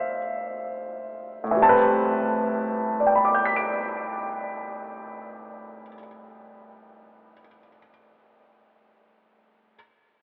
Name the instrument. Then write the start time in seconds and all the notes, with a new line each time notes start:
grand piano
Already playing: A2 E3 G3 C4 C5 E5 F5
1.44 A2
1.51 E3
1.57 G3
1.62 C4 A5
1.69 B4
3.00 D5
3.07 G5
3.15 B5
3.25 D6
3.34 G6
3.45 B6
3.56 D7